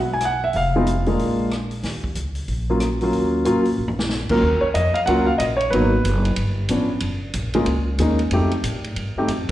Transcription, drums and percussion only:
0.20 cross-stick, closed hi-hat
0.53 open hi-hat
0.87 closed hi-hat
1.06 open hi-hat
1.19 open hi-hat
1.51 cross-stick, closed hi-hat
1.71 open hi-hat
1.83 snare, open hi-hat
2.04 kick
2.15 closed hi-hat
2.35 open hi-hat
2.48 open hi-hat
2.80 cross-stick, closed hi-hat
3.01 open hi-hat
3.13 open hi-hat
3.45 closed hi-hat
3.65 open hi-hat
3.88 floor tom
3.99 snare
4.09 snare
4.29 kick, crash
4.75 hi-hat pedal, ride
4.95 ride
5.07 ride
5.40 hi-hat pedal, ride
5.61 ride
5.73 ride
6.05 hi-hat pedal, ride
6.25 ride
6.36 ride
6.69 hi-hat pedal, ride
7.00 ride
7.34 hi-hat pedal, ride
7.54 ride
7.66 ride
7.98 hi-hat pedal, ride
8.19 ride
8.31 ride
8.51 ride
8.64 hi-hat pedal, ride
8.84 ride
8.96 ride
9.28 hi-hat pedal, ride

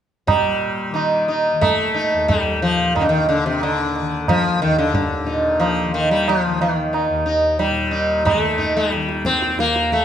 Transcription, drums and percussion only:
0.28 tabla na, tabla ge
0.96 tabla na
1.29 tabla na
1.62 tabla na, tabla ge
2.29 tabla tin, tabla ge
2.96 tabla na, tabla ge
3.62 tabla na
3.96 tabla na
4.28 tabla na, tabla ge
4.94 tabla tin, tabla ge
5.61 tabla na
6.28 tabla na
6.61 tabla na
6.94 tabla na
7.60 tabla tin
8.27 tabla na, tabla ge
8.59 tabla ge
8.92 tabla te
9.09 tabla te
9.25 tabla ke
9.42 tabla te
9.59 tabla te
9.76 tabla te
9.92 tabla ke

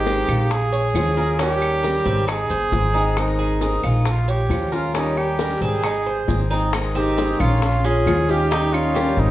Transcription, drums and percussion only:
0.06 high bongo, maracas
0.29 high bongo, claves, maracas
0.51 high bongo, maracas
0.73 maracas
0.95 high bongo, low bongo, claves, maracas
1.17 high bongo, maracas
1.39 high bongo, maracas
1.62 high bongo, claves, maracas
1.84 high bongo, maracas
2.06 high bongo, maracas
2.28 high bongo, claves, maracas
2.50 maracas
2.72 high bongo, low bongo, maracas
2.95 high bongo, maracas
3.17 high bongo, claves, maracas
3.39 high bongo
3.61 high bongo, maracas
3.83 high bongo, claves, maracas
4.05 high bongo, maracas
4.28 maracas
4.50 high bongo, low bongo, claves, maracas
4.73 high bongo, maracas
4.95 high bongo, maracas
5.17 high bongo, claves
5.39 high bongo, maracas
5.62 high bongo, maracas
5.84 high bongo, claves, maracas
6.28 high bongo, low bongo, maracas
6.51 high bongo, maracas
6.73 high bongo, claves, maracas
6.96 high bongo, maracas
7.18 high bongo, maracas
7.40 high bongo, claves, maracas
7.62 high bongo, maracas
7.85 maracas
8.07 high bongo, low bongo, claves, maracas
8.29 high bongo, maracas
8.51 high bongo, maracas
8.74 high bongo, claves, maracas
8.96 high bongo, maracas
9.18 high bongo, maracas

